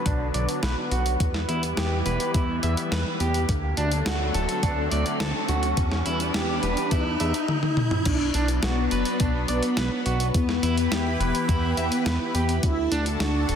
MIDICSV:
0, 0, Header, 1, 8, 480
1, 0, Start_track
1, 0, Key_signature, 1, "minor"
1, 0, Tempo, 571429
1, 1011, Time_signature, 4, 2, 24, 8
1, 11386, End_track
2, 0, Start_track
2, 0, Title_t, "Clean electric guitar"
2, 0, Program_c, 0, 27
2, 47, Note_on_c, 0, 62, 82
2, 222, Note_off_c, 0, 62, 0
2, 287, Note_on_c, 0, 74, 76
2, 393, Note_off_c, 0, 74, 0
2, 527, Note_on_c, 0, 71, 74
2, 633, Note_off_c, 0, 71, 0
2, 769, Note_on_c, 0, 66, 78
2, 943, Note_off_c, 0, 66, 0
2, 1248, Note_on_c, 0, 64, 97
2, 1353, Note_off_c, 0, 64, 0
2, 1488, Note_on_c, 0, 67, 72
2, 1663, Note_off_c, 0, 67, 0
2, 1729, Note_on_c, 0, 71, 71
2, 1958, Note_off_c, 0, 71, 0
2, 1970, Note_on_c, 0, 64, 79
2, 2144, Note_off_c, 0, 64, 0
2, 2209, Note_on_c, 0, 76, 75
2, 2314, Note_off_c, 0, 76, 0
2, 2449, Note_on_c, 0, 71, 76
2, 2554, Note_off_c, 0, 71, 0
2, 2691, Note_on_c, 0, 67, 78
2, 2864, Note_off_c, 0, 67, 0
2, 3170, Note_on_c, 0, 62, 103
2, 3274, Note_off_c, 0, 62, 0
2, 3412, Note_on_c, 0, 66, 75
2, 3585, Note_off_c, 0, 66, 0
2, 3650, Note_on_c, 0, 69, 75
2, 3879, Note_off_c, 0, 69, 0
2, 3891, Note_on_c, 0, 62, 84
2, 4064, Note_off_c, 0, 62, 0
2, 4131, Note_on_c, 0, 74, 78
2, 4235, Note_off_c, 0, 74, 0
2, 4369, Note_on_c, 0, 69, 79
2, 4474, Note_off_c, 0, 69, 0
2, 4609, Note_on_c, 0, 66, 80
2, 4783, Note_off_c, 0, 66, 0
2, 5089, Note_on_c, 0, 64, 104
2, 5194, Note_off_c, 0, 64, 0
2, 5330, Note_on_c, 0, 67, 73
2, 5503, Note_off_c, 0, 67, 0
2, 5569, Note_on_c, 0, 71, 73
2, 5798, Note_off_c, 0, 71, 0
2, 5810, Note_on_c, 0, 64, 87
2, 5984, Note_off_c, 0, 64, 0
2, 6050, Note_on_c, 0, 76, 75
2, 6154, Note_off_c, 0, 76, 0
2, 7010, Note_on_c, 0, 62, 107
2, 7114, Note_off_c, 0, 62, 0
2, 7251, Note_on_c, 0, 66, 75
2, 7424, Note_off_c, 0, 66, 0
2, 7490, Note_on_c, 0, 71, 76
2, 7719, Note_off_c, 0, 71, 0
2, 7730, Note_on_c, 0, 62, 87
2, 7904, Note_off_c, 0, 62, 0
2, 7969, Note_on_c, 0, 74, 77
2, 8074, Note_off_c, 0, 74, 0
2, 8209, Note_on_c, 0, 71, 77
2, 8314, Note_off_c, 0, 71, 0
2, 8449, Note_on_c, 0, 66, 77
2, 8623, Note_off_c, 0, 66, 0
2, 8930, Note_on_c, 0, 64, 105
2, 9034, Note_off_c, 0, 64, 0
2, 9169, Note_on_c, 0, 67, 75
2, 9343, Note_off_c, 0, 67, 0
2, 9411, Note_on_c, 0, 71, 77
2, 9639, Note_off_c, 0, 71, 0
2, 9648, Note_on_c, 0, 64, 85
2, 9823, Note_off_c, 0, 64, 0
2, 9889, Note_on_c, 0, 76, 76
2, 9994, Note_off_c, 0, 76, 0
2, 10132, Note_on_c, 0, 71, 79
2, 10235, Note_off_c, 0, 71, 0
2, 10370, Note_on_c, 0, 67, 78
2, 10543, Note_off_c, 0, 67, 0
2, 10850, Note_on_c, 0, 62, 107
2, 10955, Note_off_c, 0, 62, 0
2, 11093, Note_on_c, 0, 66, 73
2, 11265, Note_off_c, 0, 66, 0
2, 11331, Note_on_c, 0, 69, 80
2, 11386, Note_off_c, 0, 69, 0
2, 11386, End_track
3, 0, Start_track
3, 0, Title_t, "Analog polysynth"
3, 0, Program_c, 1, 90
3, 6765, Note_on_c, 1, 62, 103
3, 7016, Note_off_c, 1, 62, 0
3, 7245, Note_on_c, 1, 59, 101
3, 7872, Note_off_c, 1, 59, 0
3, 7969, Note_on_c, 1, 59, 97
3, 8594, Note_off_c, 1, 59, 0
3, 8688, Note_on_c, 1, 59, 102
3, 9313, Note_off_c, 1, 59, 0
3, 9408, Note_on_c, 1, 59, 100
3, 10513, Note_off_c, 1, 59, 0
3, 10611, Note_on_c, 1, 64, 106
3, 10858, Note_off_c, 1, 64, 0
3, 11092, Note_on_c, 1, 62, 99
3, 11386, Note_off_c, 1, 62, 0
3, 11386, End_track
4, 0, Start_track
4, 0, Title_t, "String machine"
4, 0, Program_c, 2, 50
4, 6769, Note_on_c, 2, 62, 105
4, 7018, Note_off_c, 2, 62, 0
4, 7252, Note_on_c, 2, 59, 104
4, 7875, Note_off_c, 2, 59, 0
4, 7969, Note_on_c, 2, 59, 105
4, 8594, Note_off_c, 2, 59, 0
4, 8689, Note_on_c, 2, 59, 106
4, 9314, Note_off_c, 2, 59, 0
4, 9408, Note_on_c, 2, 59, 113
4, 10513, Note_off_c, 2, 59, 0
4, 10609, Note_on_c, 2, 64, 109
4, 10857, Note_off_c, 2, 64, 0
4, 11090, Note_on_c, 2, 62, 103
4, 11386, Note_off_c, 2, 62, 0
4, 11386, End_track
5, 0, Start_track
5, 0, Title_t, "Analog synth pad"
5, 0, Program_c, 3, 89
5, 0, Note_on_c, 3, 50, 84
5, 0, Note_on_c, 3, 54, 75
5, 0, Note_on_c, 3, 59, 94
5, 991, Note_off_c, 3, 50, 0
5, 991, Note_off_c, 3, 54, 0
5, 1010, Note_on_c, 3, 52, 84
5, 1012, Note_on_c, 3, 55, 74
5, 2896, Note_off_c, 3, 59, 0
5, 2911, Note_off_c, 3, 52, 0
5, 2912, Note_off_c, 3, 55, 0
5, 2933, Note_on_c, 3, 50, 79
5, 2933, Note_on_c, 3, 54, 72
5, 2933, Note_on_c, 3, 57, 88
5, 4833, Note_off_c, 3, 50, 0
5, 4833, Note_off_c, 3, 54, 0
5, 4833, Note_off_c, 3, 57, 0
5, 4850, Note_on_c, 3, 52, 81
5, 4851, Note_on_c, 3, 55, 75
5, 4851, Note_on_c, 3, 59, 94
5, 6276, Note_off_c, 3, 52, 0
5, 6276, Note_off_c, 3, 59, 0
5, 6277, Note_off_c, 3, 55, 0
5, 6769, Note_on_c, 3, 59, 77
5, 6770, Note_on_c, 3, 54, 82
5, 6770, Note_on_c, 3, 62, 89
5, 8671, Note_off_c, 3, 54, 0
5, 8671, Note_off_c, 3, 59, 0
5, 8671, Note_off_c, 3, 62, 0
5, 8689, Note_on_c, 3, 64, 76
5, 8690, Note_on_c, 3, 52, 85
5, 8690, Note_on_c, 3, 67, 76
5, 8690, Note_on_c, 3, 71, 74
5, 8690, Note_on_c, 3, 83, 89
5, 10591, Note_off_c, 3, 52, 0
5, 10591, Note_off_c, 3, 64, 0
5, 10591, Note_off_c, 3, 67, 0
5, 10591, Note_off_c, 3, 71, 0
5, 10591, Note_off_c, 3, 83, 0
5, 10611, Note_on_c, 3, 50, 82
5, 10611, Note_on_c, 3, 62, 77
5, 10611, Note_on_c, 3, 81, 93
5, 10612, Note_on_c, 3, 66, 79
5, 10612, Note_on_c, 3, 69, 76
5, 11386, Note_off_c, 3, 50, 0
5, 11386, Note_off_c, 3, 62, 0
5, 11386, Note_off_c, 3, 66, 0
5, 11386, Note_off_c, 3, 69, 0
5, 11386, Note_off_c, 3, 81, 0
5, 11386, End_track
6, 0, Start_track
6, 0, Title_t, "Analog synth bass"
6, 0, Program_c, 4, 38
6, 50, Note_on_c, 4, 35, 93
6, 262, Note_off_c, 4, 35, 0
6, 289, Note_on_c, 4, 35, 89
6, 396, Note_off_c, 4, 35, 0
6, 530, Note_on_c, 4, 35, 103
6, 636, Note_off_c, 4, 35, 0
6, 768, Note_on_c, 4, 35, 84
6, 981, Note_off_c, 4, 35, 0
6, 1010, Note_on_c, 4, 40, 101
6, 1222, Note_off_c, 4, 40, 0
6, 1250, Note_on_c, 4, 40, 85
6, 1462, Note_off_c, 4, 40, 0
6, 1490, Note_on_c, 4, 40, 82
6, 1702, Note_off_c, 4, 40, 0
6, 1730, Note_on_c, 4, 28, 81
6, 1836, Note_off_c, 4, 28, 0
6, 1970, Note_on_c, 4, 40, 96
6, 2182, Note_off_c, 4, 40, 0
6, 2212, Note_on_c, 4, 40, 87
6, 2317, Note_off_c, 4, 40, 0
6, 2452, Note_on_c, 4, 40, 102
6, 2557, Note_off_c, 4, 40, 0
6, 2691, Note_on_c, 4, 40, 84
6, 2903, Note_off_c, 4, 40, 0
6, 2931, Note_on_c, 4, 38, 102
6, 3142, Note_off_c, 4, 38, 0
6, 3172, Note_on_c, 4, 38, 87
6, 3383, Note_off_c, 4, 38, 0
6, 3410, Note_on_c, 4, 38, 82
6, 3622, Note_off_c, 4, 38, 0
6, 3652, Note_on_c, 4, 26, 79
6, 3757, Note_off_c, 4, 26, 0
6, 3891, Note_on_c, 4, 38, 92
6, 4102, Note_off_c, 4, 38, 0
6, 4132, Note_on_c, 4, 38, 89
6, 4237, Note_off_c, 4, 38, 0
6, 4371, Note_on_c, 4, 38, 102
6, 4477, Note_off_c, 4, 38, 0
6, 4610, Note_on_c, 4, 38, 83
6, 4822, Note_off_c, 4, 38, 0
6, 4850, Note_on_c, 4, 40, 100
6, 5062, Note_off_c, 4, 40, 0
6, 5092, Note_on_c, 4, 40, 83
6, 5303, Note_off_c, 4, 40, 0
6, 5332, Note_on_c, 4, 40, 81
6, 5543, Note_off_c, 4, 40, 0
6, 5572, Note_on_c, 4, 28, 79
6, 5677, Note_off_c, 4, 28, 0
6, 5809, Note_on_c, 4, 40, 93
6, 6022, Note_off_c, 4, 40, 0
6, 6052, Note_on_c, 4, 40, 93
6, 6157, Note_off_c, 4, 40, 0
6, 6770, Note_on_c, 4, 35, 102
6, 6982, Note_off_c, 4, 35, 0
6, 7011, Note_on_c, 4, 35, 85
6, 7222, Note_off_c, 4, 35, 0
6, 7252, Note_on_c, 4, 35, 84
6, 7463, Note_off_c, 4, 35, 0
6, 7492, Note_on_c, 4, 30, 82
6, 7597, Note_off_c, 4, 30, 0
6, 7730, Note_on_c, 4, 35, 96
6, 7942, Note_off_c, 4, 35, 0
6, 7972, Note_on_c, 4, 35, 88
6, 8077, Note_off_c, 4, 35, 0
6, 8211, Note_on_c, 4, 35, 108
6, 8316, Note_off_c, 4, 35, 0
6, 8452, Note_on_c, 4, 35, 85
6, 8663, Note_off_c, 4, 35, 0
6, 8690, Note_on_c, 4, 40, 99
6, 8902, Note_off_c, 4, 40, 0
6, 8929, Note_on_c, 4, 40, 87
6, 9141, Note_off_c, 4, 40, 0
6, 9170, Note_on_c, 4, 40, 83
6, 9382, Note_off_c, 4, 40, 0
6, 9411, Note_on_c, 4, 28, 84
6, 9517, Note_off_c, 4, 28, 0
6, 9651, Note_on_c, 4, 40, 96
6, 9862, Note_off_c, 4, 40, 0
6, 9891, Note_on_c, 4, 40, 92
6, 9997, Note_off_c, 4, 40, 0
6, 10130, Note_on_c, 4, 40, 110
6, 10236, Note_off_c, 4, 40, 0
6, 10370, Note_on_c, 4, 40, 85
6, 10582, Note_off_c, 4, 40, 0
6, 10611, Note_on_c, 4, 38, 104
6, 10822, Note_off_c, 4, 38, 0
6, 10852, Note_on_c, 4, 38, 84
6, 11063, Note_off_c, 4, 38, 0
6, 11091, Note_on_c, 4, 38, 86
6, 11303, Note_off_c, 4, 38, 0
6, 11332, Note_on_c, 4, 26, 81
6, 11386, Note_off_c, 4, 26, 0
6, 11386, End_track
7, 0, Start_track
7, 0, Title_t, "Riser"
7, 0, Program_c, 5, 103
7, 0, Note_on_c, 5, 60, 82
7, 6770, Note_off_c, 5, 60, 0
7, 11386, End_track
8, 0, Start_track
8, 0, Title_t, "Drums"
8, 48, Note_on_c, 9, 42, 94
8, 50, Note_on_c, 9, 36, 122
8, 132, Note_off_c, 9, 42, 0
8, 134, Note_off_c, 9, 36, 0
8, 288, Note_on_c, 9, 42, 67
8, 372, Note_off_c, 9, 42, 0
8, 408, Note_on_c, 9, 42, 69
8, 492, Note_off_c, 9, 42, 0
8, 527, Note_on_c, 9, 38, 116
8, 527, Note_on_c, 9, 42, 94
8, 611, Note_off_c, 9, 38, 0
8, 611, Note_off_c, 9, 42, 0
8, 769, Note_on_c, 9, 42, 66
8, 853, Note_off_c, 9, 42, 0
8, 888, Note_on_c, 9, 42, 67
8, 972, Note_off_c, 9, 42, 0
8, 1010, Note_on_c, 9, 36, 124
8, 1010, Note_on_c, 9, 42, 98
8, 1094, Note_off_c, 9, 36, 0
8, 1094, Note_off_c, 9, 42, 0
8, 1129, Note_on_c, 9, 38, 38
8, 1213, Note_off_c, 9, 38, 0
8, 1249, Note_on_c, 9, 42, 66
8, 1333, Note_off_c, 9, 42, 0
8, 1369, Note_on_c, 9, 42, 67
8, 1453, Note_off_c, 9, 42, 0
8, 1489, Note_on_c, 9, 38, 121
8, 1489, Note_on_c, 9, 42, 95
8, 1573, Note_off_c, 9, 38, 0
8, 1573, Note_off_c, 9, 42, 0
8, 1728, Note_on_c, 9, 42, 67
8, 1812, Note_off_c, 9, 42, 0
8, 1848, Note_on_c, 9, 42, 69
8, 1932, Note_off_c, 9, 42, 0
8, 1969, Note_on_c, 9, 42, 93
8, 1970, Note_on_c, 9, 36, 123
8, 2053, Note_off_c, 9, 42, 0
8, 2054, Note_off_c, 9, 36, 0
8, 2209, Note_on_c, 9, 42, 67
8, 2293, Note_off_c, 9, 42, 0
8, 2330, Note_on_c, 9, 42, 68
8, 2414, Note_off_c, 9, 42, 0
8, 2451, Note_on_c, 9, 38, 124
8, 2451, Note_on_c, 9, 42, 96
8, 2535, Note_off_c, 9, 38, 0
8, 2535, Note_off_c, 9, 42, 0
8, 2690, Note_on_c, 9, 42, 69
8, 2774, Note_off_c, 9, 42, 0
8, 2809, Note_on_c, 9, 42, 67
8, 2893, Note_off_c, 9, 42, 0
8, 2929, Note_on_c, 9, 42, 94
8, 2931, Note_on_c, 9, 36, 127
8, 3013, Note_off_c, 9, 42, 0
8, 3015, Note_off_c, 9, 36, 0
8, 3169, Note_on_c, 9, 42, 68
8, 3253, Note_off_c, 9, 42, 0
8, 3289, Note_on_c, 9, 42, 68
8, 3373, Note_off_c, 9, 42, 0
8, 3410, Note_on_c, 9, 38, 127
8, 3410, Note_on_c, 9, 42, 96
8, 3494, Note_off_c, 9, 38, 0
8, 3494, Note_off_c, 9, 42, 0
8, 3649, Note_on_c, 9, 42, 66
8, 3733, Note_off_c, 9, 42, 0
8, 3769, Note_on_c, 9, 42, 65
8, 3853, Note_off_c, 9, 42, 0
8, 3889, Note_on_c, 9, 42, 92
8, 3891, Note_on_c, 9, 36, 127
8, 3973, Note_off_c, 9, 42, 0
8, 3975, Note_off_c, 9, 36, 0
8, 4129, Note_on_c, 9, 42, 66
8, 4213, Note_off_c, 9, 42, 0
8, 4249, Note_on_c, 9, 42, 65
8, 4333, Note_off_c, 9, 42, 0
8, 4369, Note_on_c, 9, 38, 124
8, 4369, Note_on_c, 9, 42, 96
8, 4453, Note_off_c, 9, 38, 0
8, 4453, Note_off_c, 9, 42, 0
8, 4607, Note_on_c, 9, 42, 67
8, 4691, Note_off_c, 9, 42, 0
8, 4727, Note_on_c, 9, 42, 69
8, 4811, Note_off_c, 9, 42, 0
8, 4848, Note_on_c, 9, 42, 92
8, 4850, Note_on_c, 9, 36, 127
8, 4932, Note_off_c, 9, 42, 0
8, 4934, Note_off_c, 9, 36, 0
8, 4969, Note_on_c, 9, 38, 38
8, 5053, Note_off_c, 9, 38, 0
8, 5088, Note_on_c, 9, 42, 65
8, 5172, Note_off_c, 9, 42, 0
8, 5208, Note_on_c, 9, 42, 65
8, 5292, Note_off_c, 9, 42, 0
8, 5328, Note_on_c, 9, 38, 123
8, 5328, Note_on_c, 9, 42, 89
8, 5412, Note_off_c, 9, 38, 0
8, 5412, Note_off_c, 9, 42, 0
8, 5568, Note_on_c, 9, 42, 64
8, 5652, Note_off_c, 9, 42, 0
8, 5687, Note_on_c, 9, 42, 60
8, 5771, Note_off_c, 9, 42, 0
8, 5807, Note_on_c, 9, 42, 92
8, 5809, Note_on_c, 9, 36, 127
8, 5891, Note_off_c, 9, 42, 0
8, 5893, Note_off_c, 9, 36, 0
8, 6048, Note_on_c, 9, 42, 62
8, 6132, Note_off_c, 9, 42, 0
8, 6167, Note_on_c, 9, 42, 67
8, 6251, Note_off_c, 9, 42, 0
8, 6287, Note_on_c, 9, 48, 64
8, 6371, Note_off_c, 9, 48, 0
8, 6407, Note_on_c, 9, 48, 61
8, 6491, Note_off_c, 9, 48, 0
8, 6526, Note_on_c, 9, 47, 85
8, 6610, Note_off_c, 9, 47, 0
8, 6646, Note_on_c, 9, 45, 85
8, 6730, Note_off_c, 9, 45, 0
8, 6766, Note_on_c, 9, 42, 97
8, 6766, Note_on_c, 9, 49, 107
8, 6769, Note_on_c, 9, 36, 122
8, 6850, Note_off_c, 9, 42, 0
8, 6850, Note_off_c, 9, 49, 0
8, 6853, Note_off_c, 9, 36, 0
8, 7006, Note_on_c, 9, 42, 67
8, 7090, Note_off_c, 9, 42, 0
8, 7127, Note_on_c, 9, 42, 69
8, 7211, Note_off_c, 9, 42, 0
8, 7246, Note_on_c, 9, 38, 123
8, 7246, Note_on_c, 9, 42, 101
8, 7330, Note_off_c, 9, 38, 0
8, 7330, Note_off_c, 9, 42, 0
8, 7486, Note_on_c, 9, 42, 69
8, 7570, Note_off_c, 9, 42, 0
8, 7606, Note_on_c, 9, 42, 68
8, 7690, Note_off_c, 9, 42, 0
8, 7726, Note_on_c, 9, 42, 94
8, 7730, Note_on_c, 9, 36, 123
8, 7810, Note_off_c, 9, 42, 0
8, 7814, Note_off_c, 9, 36, 0
8, 7966, Note_on_c, 9, 42, 70
8, 8050, Note_off_c, 9, 42, 0
8, 8086, Note_on_c, 9, 42, 70
8, 8170, Note_off_c, 9, 42, 0
8, 8206, Note_on_c, 9, 38, 118
8, 8206, Note_on_c, 9, 42, 98
8, 8290, Note_off_c, 9, 38, 0
8, 8290, Note_off_c, 9, 42, 0
8, 8448, Note_on_c, 9, 42, 69
8, 8532, Note_off_c, 9, 42, 0
8, 8569, Note_on_c, 9, 42, 71
8, 8653, Note_off_c, 9, 42, 0
8, 8689, Note_on_c, 9, 42, 102
8, 8690, Note_on_c, 9, 36, 125
8, 8773, Note_off_c, 9, 42, 0
8, 8774, Note_off_c, 9, 36, 0
8, 8810, Note_on_c, 9, 38, 38
8, 8894, Note_off_c, 9, 38, 0
8, 8930, Note_on_c, 9, 42, 67
8, 9014, Note_off_c, 9, 42, 0
8, 9051, Note_on_c, 9, 42, 70
8, 9135, Note_off_c, 9, 42, 0
8, 9170, Note_on_c, 9, 38, 122
8, 9170, Note_on_c, 9, 42, 96
8, 9254, Note_off_c, 9, 38, 0
8, 9254, Note_off_c, 9, 42, 0
8, 9413, Note_on_c, 9, 42, 68
8, 9497, Note_off_c, 9, 42, 0
8, 9532, Note_on_c, 9, 42, 67
8, 9616, Note_off_c, 9, 42, 0
8, 9650, Note_on_c, 9, 36, 126
8, 9651, Note_on_c, 9, 42, 96
8, 9734, Note_off_c, 9, 36, 0
8, 9735, Note_off_c, 9, 42, 0
8, 9890, Note_on_c, 9, 42, 68
8, 9974, Note_off_c, 9, 42, 0
8, 10011, Note_on_c, 9, 42, 72
8, 10095, Note_off_c, 9, 42, 0
8, 10131, Note_on_c, 9, 38, 119
8, 10131, Note_on_c, 9, 42, 97
8, 10215, Note_off_c, 9, 38, 0
8, 10215, Note_off_c, 9, 42, 0
8, 10371, Note_on_c, 9, 42, 72
8, 10455, Note_off_c, 9, 42, 0
8, 10490, Note_on_c, 9, 42, 71
8, 10574, Note_off_c, 9, 42, 0
8, 10610, Note_on_c, 9, 36, 127
8, 10610, Note_on_c, 9, 42, 101
8, 10694, Note_off_c, 9, 36, 0
8, 10694, Note_off_c, 9, 42, 0
8, 10850, Note_on_c, 9, 42, 68
8, 10934, Note_off_c, 9, 42, 0
8, 10971, Note_on_c, 9, 42, 68
8, 11055, Note_off_c, 9, 42, 0
8, 11090, Note_on_c, 9, 38, 127
8, 11090, Note_on_c, 9, 42, 98
8, 11174, Note_off_c, 9, 38, 0
8, 11174, Note_off_c, 9, 42, 0
8, 11330, Note_on_c, 9, 42, 65
8, 11386, Note_off_c, 9, 42, 0
8, 11386, End_track
0, 0, End_of_file